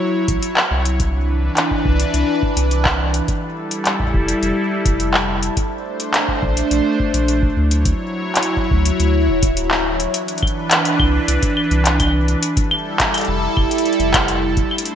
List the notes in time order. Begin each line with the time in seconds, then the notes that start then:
Already playing: F#3 E4 C#5
0.28 A1, kick, closed hi-hat
0.43 closed hi-hat
0.57 clap
0.71 C2
0.85 closed hi-hat
1.00 E3 D4 B4, kick, closed hi-hat
1.57 clap, closed hi-hat
1.71 kick
1.85 C2, kick
2.00 closed hi-hat
2.14 C2, closed hi-hat
2.43 kick
2.57 C2, closed hi-hat
2.71 closed hi-hat
2.85 kick, clap
3.14 closed hi-hat
3.28 G3 E4 A4, kick, closed hi-hat
3.71 closed hi-hat
3.85 clap, closed hi-hat
4.00 kick
4.03 kick
4.07 kick
4.10 kick
4.14 F1, kick
4.28 closed hi-hat
4.43 F1, closed hi-hat
4.85 F1, kick, closed hi-hat
5.00 closed hi-hat
5.14 clap
5.43 closed hi-hat
5.57 A3 D4 C5, kick, closed hi-hat
6.00 closed hi-hat
6.14 clap, closed hi-hat
6.28 kick
6.43 A#1, kick
6.57 closed hi-hat
6.71 A#1, closed hi-hat
7.00 kick
7.14 A#1, closed hi-hat
7.28 closed hi-hat
7.43 kick
7.57 D2 F#3 E4 C#5
7.71 closed hi-hat
7.85 kick, closed hi-hat
8.35 clap, closed hi-hat
8.43 closed hi-hat
8.57 kick
8.71 D2, kick
8.85 closed hi-hat
9.00 D2, closed hi-hat
9.28 D1
9.43 kick, closed hi-hat
9.57 closed hi-hat
9.71 clap
10.00 closed hi-hat
10.14 E3 D4 B4, closed hi-hat
10.28 closed hi-hat
10.38 closed hi-hat
10.43 kick, claves
10.47 closed hi-hat
10.71 clap, closed hi-hat
10.85 closed hi-hat
11.00 C2, kick, claves
11.28 C2, closed hi-hat
11.43 kick, closed hi-hat
11.57 claves
11.71 C2, closed hi-hat
11.85 clap, closed hi-hat
12.00 kick, closed hi-hat, claves
12.03 claves
12.07 claves
12.10 claves
12.28 closed hi-hat
12.43 G3 E4 A4, closed hi-hat
12.57 kick, closed hi-hat
12.71 claves
13.00 kick, clap, closed hi-hat
13.14 closed hi-hat, claves
13.18 closed hi-hat
13.25 F1, closed hi-hat
13.57 F1, kick, claves
13.71 closed hi-hat
13.78 closed hi-hat
13.85 closed hi-hat
13.93 closed hi-hat
14.00 F1, closed hi-hat
14.14 kick, clap, closed hi-hat, claves
14.28 closed hi-hat
14.57 kick, closed hi-hat
14.71 A3 D4 C5, claves
14.78 closed hi-hat
14.85 closed hi-hat